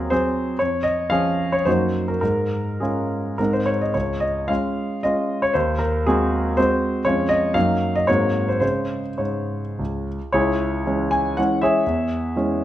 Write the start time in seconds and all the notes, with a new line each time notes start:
Already playing: D#2 F#3 C4 G#4 A#4 C5
0.10 F#3 C4 G#4 C5
0.59 F2 C#5
0.83 D#5
1.10 F3 C#4 G#4 F5
1.52 C#5
1.65 F#2 A#3 D#4 F#4 C5
2.08 A#4
2.21 G#2 A#4
2.80 G#3 C#4 F4 G#4
3.38 G#2 G#3 C4 D#4 A#4
3.53 C5
3.66 C#5
3.81 D#5
3.94 C#2 C#5
4.20 D#5
4.48 G#3 C#4 F4 F5
5.03 G#3 C#4 F4 D#5
5.42 C#5
5.54 D#2 C5
5.79 A#4
6.07 G#3 C4 F#4 G#4
6.57 G#3 C4 F#4 C5
7.05 F2 G#3 C#4 F4 C#5
7.29 D#5
7.54 F#2 F#3 A#3 D#4 F5
7.96 D#5
8.07 G#2 F#3 A#3 C4 C#5
8.48 C5
8.60 C#3 G#3 C#4 C5
9.18 G#2 C#5
9.79 C#2
10.32 C#2 E4 G#4 C#5
10.86 E3 G#3 C#4
11.11 G#5
11.37 E3 G#3 C#4 F#5
11.61 G#4 C#5 E5
11.86 E2
12.36 E3 G#3 C#4